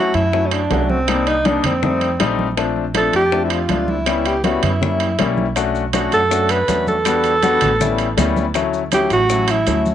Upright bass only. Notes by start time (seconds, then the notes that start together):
0.14 F#2
0.70 C2
1.64 F2
2.20 A#1
3.13 F2
3.69 C#2
4.63 F#2
5.19 B1
6.12 F#2
6.68 E2
7.62 A1
8.17 D2
9.11 A1
9.67 D2